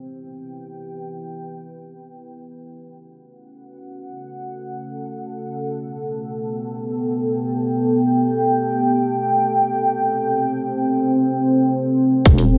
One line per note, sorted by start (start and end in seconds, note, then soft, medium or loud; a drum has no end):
0.00 2.08 E4 medium
0.00 2.08 B4 medium
0.00 2.08 G5 medium
2.12 5.46 C#4 medium
2.12 12.22 A4 medium
2.12 5.46 F#5 medium
5.50 8.84 B3 medium
5.50 12.22 G5 medium
8.87 12.22 C4 medium
12.26 12.58 E1 loud
12.26 12.58 E4 medium
12.26 12.58 B4 medium
12.26 12.58 G5 medium
12.26 kick loud
12.26 closed hi-hat medium
12.38 closed hi-hat medium